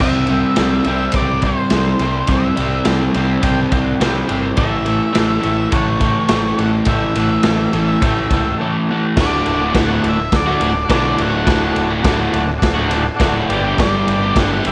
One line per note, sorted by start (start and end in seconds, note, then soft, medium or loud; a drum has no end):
0.00 0.43 C2 medium
0.00 0.28 C3 loud
0.00 0.30 G3 medium
0.00 0.29 C4 medium
0.00 0.18 G4 medium
0.00 0.18 C5 medium
0.00 0.18 E5 loud
0.00 1.16 E5 loud
0.00 kick loud
0.27 0.56 C3 medium
0.27 0.57 G3 medium
0.27 0.58 C4 loud
0.27 0.47 C5 medium
0.27 0.47 G5 medium
0.27 ride medium
0.31 0.48 G4 medium
0.55 0.79 C2 medium
0.55 0.86 C3 medium
0.55 0.87 G3 medium
0.55 0.88 C4 medium
0.55 0.74 G4 medium
0.55 0.74 C5 medium
0.55 0.75 D5 medium
0.55 snare loud
0.55 ride loud
0.84 1.07 C2 medium
0.84 1.14 C3 medium
0.84 1.15 G3 medium
0.84 1.04 G4 medium
0.84 1.05 C5 medium
0.84 1.04 E5 loud
0.84 ride medium
0.89 1.15 C4 medium
1.12 1.56 C2 medium
1.12 1.43 C3 medium
1.12 1.32 G4 medium
1.12 kick loud
1.12 ride loud
1.16 1.43 G3 medium
1.16 1.44 C4 loud
1.16 1.33 C5 medium
1.16 1.33 D5 loud
1.16 1.45 D5 loud
1.42 1.70 C3 medium
1.42 1.71 G3 medium
1.42 1.72 C4 medium
1.42 1.60 G4 medium
1.42 1.61 C5 medium
1.42 2.32 C5 medium
1.42 1.61 E5 medium
1.42 kick medium
1.42 ride medium
1.70 1.93 C2 loud
1.70 2.00 C3 medium
1.70 2.00 G3 medium
1.70 2.01 C4 medium
1.70 1.90 G4 medium
1.70 1.90 C5 medium
1.70 snare loud
1.70 ride medium
1.74 1.91 E5 medium
1.99 2.21 C2 medium
1.99 2.26 C3 medium
1.99 2.27 G3 medium
1.99 2.27 C4 medium
1.99 2.18 G4 medium
1.99 ride medium
2.03 2.19 C5 medium
2.03 2.20 E5 medium
2.27 2.50 C2 loud
2.27 2.55 C3 medium
2.27 2.56 G3 medium
2.27 2.57 C4 loud
2.27 2.83 E5 medium
2.27 kick loud
2.27 ride medium
2.32 2.48 G4 loud
2.32 2.48 C5 medium
2.32 2.49 E5 loud
2.56 2.79 C2 medium
2.56 2.83 C3 medium
2.56 2.84 G3 medium
2.56 2.85 C4 medium
2.56 ride medium
2.62 2.77 G4 medium
2.62 2.78 C5 medium
2.62 2.77 E5 medium
2.85 3.08 C2 loud
2.85 3.14 C3 loud
2.85 3.14 G3 medium
2.85 3.15 C4 loud
2.85 3.04 G4 medium
2.85 3.03 C5 medium
2.85 3.04 D5 medium
2.85 snare loud
2.85 ride medium
3.14 3.36 C2 medium
3.14 3.39 C3 medium
3.14 3.41 G3 medium
3.14 3.41 C4 medium
3.14 3.33 G4 medium
3.14 3.33 C5 medium
3.14 ride medium
3.19 3.34 E5 loud
3.19 3.44 B5 medium
3.40 3.65 C2 medium
3.40 3.69 C3 medium
3.40 3.71 G3 loud
3.40 3.71 C4 loud
3.40 3.61 G4 loud
3.40 3.61 C5 medium
3.40 kick loud
3.40 ride loud
3.45 3.62 G5 loud
3.45 3.71 A5 medium
3.70 3.93 C2 medium
3.70 3.98 C3 medium
3.70 3.99 G3 medium
3.70 4.00 C4 medium
3.70 3.89 G4 medium
3.70 3.89 C5 medium
3.70 3.89 E5 loud
3.70 3.86 G5 medium
3.70 kick medium
3.70 ride medium
3.83 3.98 F#5 medium
4.00 4.22 C2 loud
4.00 4.26 C3 medium
4.00 4.26 G3 medium
4.00 4.27 C4 medium
4.00 4.18 G4 loud
4.00 4.18 C5 medium
4.00 4.19 E5 loud
4.00 snare loud
4.00 ride medium
4.25 4.55 C3 medium
4.25 4.55 G3 medium
4.25 4.56 C4 loud
4.25 4.45 G4 loud
4.25 4.46 C5 medium
4.25 4.45 E5 loud
4.25 ride medium
4.30 4.51 G1 loud
4.56 5.00 A1 loud
4.56 4.84 A2 medium
4.56 4.85 E3 medium
4.56 4.86 A3 medium
4.56 5.73 E5 loud
4.56 kick loud
4.56 ride medium
4.61 4.77 A4 loud
4.61 4.78 C#5 medium
4.61 4.77 E5 loud
4.85 5.13 A2 medium
4.85 5.14 E3 medium
4.85 5.14 A3 medium
4.85 5.05 A4 medium
4.85 5.05 C#5 medium
4.85 ride medium
4.90 5.06 E5 loud
5.13 5.37 A1 medium
5.13 5.40 A2 loud
5.13 5.41 E3 loud
5.13 5.42 A3 loud
5.13 snare loud
5.13 ride loud
5.18 5.34 A4 medium
5.18 5.35 C#5 medium
5.18 5.34 E5 medium
5.40 5.70 A2 medium
5.40 5.71 E3 medium
5.40 5.73 A3 medium
5.40 5.60 A4 loud
5.40 5.61 C#5 medium
5.40 5.61 E5 loud
5.40 ride medium
5.44 5.65 A1 medium
5.71 6.15 A1 medium
5.71 5.99 A2 loud
5.71 6.00 E3 medium
5.71 6.01 A3 loud
5.71 5.90 A4 loud
5.71 5.89 C#5 medium
5.71 6.60 C#5 loud
5.71 5.90 F#5 loud
5.71 kick loud
5.71 ride medium
6.00 6.29 A2 medium
6.00 6.30 E3 medium
6.00 6.31 A3 loud
6.00 6.18 A4 medium
6.00 6.18 C#5 medium
6.00 6.18 G5 medium
6.00 kick medium
6.00 ride medium
6.26 6.57 A2 medium
6.26 6.46 A4 medium
6.26 6.47 C#5 medium
6.26 6.47 G5 medium
6.26 snare loud
6.26 ride loud
6.31 6.52 A1 loud
6.31 6.58 E3 medium
6.31 6.59 A3 medium
6.57 6.80 A1 medium
6.57 6.87 A2 medium
6.57 6.88 E3 loud
6.57 6.88 A3 medium
6.57 6.75 A4 medium
6.57 6.76 C#5 medium
6.57 6.75 E5 medium
6.57 6.68 F#5 loud
6.57 ride medium
6.85 7.08 A1 loud
6.85 7.14 A2 loud
6.85 7.15 E3 medium
6.85 7.04 A4 loud
6.85 7.05 C#5 loud
6.85 8.57 E5 loud
6.85 7.05 G5 loud
6.85 kick loud
6.85 ride medium
6.89 7.16 A3 loud
7.15 7.37 A1 loud
7.15 7.42 A2 medium
7.15 7.44 E3 medium
7.15 7.44 A3 medium
7.15 7.34 F#5 medium
7.15 ride medium
7.19 7.35 A4 medium
7.19 7.35 C#5 medium
7.43 7.66 A1 medium
7.43 7.72 A2 medium
7.43 7.72 E3 loud
7.43 7.74 A3 medium
7.43 7.62 A4 medium
7.43 7.62 C#5 medium
7.43 7.62 E5 medium
7.43 snare loud
7.43 ride medium
7.72 7.95 A1 loud
7.72 8.01 A2 medium
7.72 8.01 E3 medium
7.72 8.02 A3 medium
7.72 7.91 A4 medium
7.72 7.90 C#5 medium
7.72 7.91 E5 loud
7.72 ride medium
8.01 8.24 A1 medium
8.01 8.31 A2 loud
8.01 8.32 E3 medium
8.01 8.32 A3 loud
8.01 8.19 A4 loud
8.01 8.19 C#5 loud
8.01 8.19 G5 loud
8.01 kick loud
8.01 ride loud
8.29 8.52 C#2 medium
8.29 8.59 A2 medium
8.29 8.48 A4 medium
8.29 8.49 C#5 medium
8.29 8.49 G5 loud
8.29 kick medium
8.29 ride medium
8.33 8.60 E3 medium
8.33 8.60 A3 medium
8.57 8.89 A2 medium
8.57 8.90 E3 medium
8.57 8.76 A4 medium
8.57 8.77 C#5 medium
8.57 8.76 E5 loud
8.62 8.90 A3 medium
8.88 9.16 A2 medium
8.88 9.16 E3 medium
8.88 9.17 A3 medium
8.88 9.06 A4 medium
8.88 9.06 C#5 medium
8.88 9.07 F#5 loud
9.16 9.40 D1 medium
9.16 9.72 D2 medium
9.16 9.73 A2 loud
9.16 9.63 D3 loud
9.16 9.61 A3 loud
9.16 9.59 F#4 loud
9.16 9.36 F#4 medium
9.16 kick loud
9.16 snare loud
9.16 crash loud
9.20 9.36 A4 medium
9.20 9.37 D5 loud
9.20 9.79 D5 loud
9.44 9.69 D1 loud
9.44 9.63 F#4 loud
9.44 9.64 A4 loud
9.44 9.64 D5 loud
9.44 ride medium
9.60 9.74 A3 medium
9.60 9.76 F#4 medium
9.64 9.74 D3 medium
9.72 9.98 D1 loud
9.72 10.17 D2 loud
9.72 10.18 A2 loud
9.72 9.89 D3 loud
9.72 9.87 A3 loud
9.72 9.92 F#4 medium
9.72 9.87 F#4 loud
9.72 9.92 A4 medium
9.72 9.92 D5 medium
9.72 kick loud
9.72 snare loud
9.72 ride loud
9.78 10.06 F#5 loud
9.88 10.18 D3 medium
9.88 10.18 A3 medium
9.88 10.17 F#4 medium
10.00 10.20 F#4 medium
10.00 10.20 A4 medium
10.00 10.20 D5 medium
10.00 ride medium
10.04 10.27 D1 loud
10.04 10.33 E5 loud
10.19 muted overdriven electric guitar stroke medium
10.32 10.56 D2 medium
10.32 10.51 F#4 medium
10.32 10.50 A4 medium
10.32 10.51 D5 medium
10.32 kick loud
10.32 snare loud
10.32 ride loud
10.36 10.88 D5 loud
10.46 10.61 D3 medium
10.46 10.62 A3 medium
10.46 10.62 F#4 medium
10.56 10.76 F#4 medium
10.56 10.77 A4 medium
10.56 10.77 D5 medium
10.60 10.84 D1 medium
10.60 10.73 A2 medium
10.60 10.73 D3 medium
10.60 10.73 A3 medium
10.60 10.72 F#4 medium
10.60 ride medium
10.73 muted overdriven electric guitar stroke soft
10.84 11.05 F#4 loud
10.84 11.05 A4 loud
10.84 11.06 D5 loud
10.89 11.13 B1 loud
10.89 11.45 D2 medium
10.89 11.16 A2 loud
10.89 11.17 D3 loud
10.89 11.17 A3 medium
10.89 11.18 F#4 loud
10.89 kick loud
10.89 snare loud
10.89 ride loud
10.95 11.23 D5 loud
11.13 11.45 A2 medium
11.13 11.34 F#4 medium
11.13 11.34 A4 medium
11.13 11.35 D5 medium
11.18 11.42 D1 medium
11.18 11.31 D3 medium
11.18 11.31 A3 medium
11.18 11.29 F#4 medium
11.18 11.74 F#5 medium
11.18 ride medium
11.30 11.46 D3 medium
11.30 11.47 A3 medium
11.30 11.48 F#4 medium
11.44 11.70 D1 loud
11.44 12.02 D2 loud
11.44 12.03 A2 medium
11.44 11.90 D3 medium
11.44 11.64 F#4 loud
11.44 11.64 A4 medium
11.44 11.64 D5 loud
11.44 kick loud
11.44 snare loud
11.44 ride loud
11.48 11.89 A3 loud
11.48 11.88 F#4 loud
11.71 11.92 F#4 loud
11.71 11.92 A4 loud
11.71 11.93 D5 loud
11.76 11.99 D1 medium
11.76 ride medium
11.89 12.04 D3 medium
11.89 12.05 A3 medium
11.89 12.05 F#4 medium
12.02 12.28 D1 loud
12.02 12.48 D2 loud
12.02 12.46 A2 loud
12.02 12.19 D3 loud
12.02 12.21 F#4 medium
12.02 12.22 A4 medium
12.02 12.22 D5 loud
12.02 kick loud
12.02 snare loud
12.02 ride loud
12.06 12.18 A3 loud
12.06 12.16 F#4 loud
12.18 12.45 D3 medium
12.18 12.45 A3 medium
12.18 12.44 F#4 medium
12.31 12.57 D1 medium
12.31 12.50 F#4 loud
12.31 12.51 A4 medium
12.31 12.51 D5 loud
12.31 ride medium
12.45 muted overdriven electric guitar stroke medium
12.58 12.78 F#4 loud
12.58 12.79 A4 medium
12.58 12.79 D5 loud
12.62 13.09 D1 medium
12.62 kick loud
12.62 snare loud
12.62 ride loud
12.75 12.89 D3 medium
12.75 12.91 A3 medium
12.75 12.91 F#4 medium
12.86 13.05 A2 medium
12.86 13.07 F#4 loud
12.86 13.07 A4 medium
12.86 13.08 D5 loud
12.90 13.04 D3 medium
12.90 13.04 A3 medium
12.90 13.03 F#4 medium
12.90 ride medium
13.04 muted overdriven electric guitar stroke medium
13.14 13.36 F#4 loud
13.14 13.35 A4 loud
13.14 13.36 D5 loud
13.19 13.43 D1 loud
13.19 13.47 D2 medium
13.19 13.48 A2 medium
13.19 13.48 D3 loud
13.19 13.48 A3 loud
13.19 13.49 F#4 loud
13.19 kick loud
13.19 snare loud
13.19 ride loud
13.48 13.72 G1 medium
13.48 13.77 G2 loud
13.48 13.77 D3 medium
13.48 13.67 G3 loud
13.48 13.66 B3 loud
13.48 13.65 D4 loud
13.48 13.95 G4 loud
13.48 13.64 G4 loud
13.48 13.95 B4 medium
13.48 13.95 D5 loud
13.48 ride medium
13.64 13.79 G3 medium
13.64 13.79 B3 medium
13.64 13.80 D4 medium
13.64 13.80 G4 medium
13.77 14.01 G1 loud
13.77 14.37 G2 medium
13.77 14.37 D3 medium
13.77 14.25 G3 medium
13.77 14.25 B3 loud
13.77 14.23 D4 loud
13.77 14.22 G4 loud
13.77 14.39 D5 loud
13.77 kick loud
13.77 snare loud
13.77 ride loud
14.08 14.31 G1 loud
14.08 14.26 G4 loud
14.08 14.26 B4 loud
14.08 14.26 D5 loud
14.08 ride medium
14.22 14.38 G3 medium
14.22 14.39 B3 medium
14.22 14.39 D4 medium
14.22 14.40 G4 medium
14.36 14.59 G1 loud
14.36 14.72 G2 medium
14.36 14.72 D3 loud
14.36 14.53 G3 loud
14.36 14.52 B3 loud
14.36 14.52 D4 loud
14.36 14.55 B4 medium
14.36 14.65 F#5 loud
14.36 kick loud
14.36 snare loud
14.36 ride loud
14.40 14.56 G4 medium
14.40 14.50 G4 loud
14.40 14.56 D5 medium
14.51 14.72 G3 medium
14.51 14.72 B3 medium
14.51 14.72 D4 medium
14.51 14.72 G4 medium
14.65 14.72 G1 medium
14.65 14.72 G4 medium
14.65 14.72 B4 medium
14.65 14.72 D5 loud
14.65 14.72 E5 loud
14.65 ride medium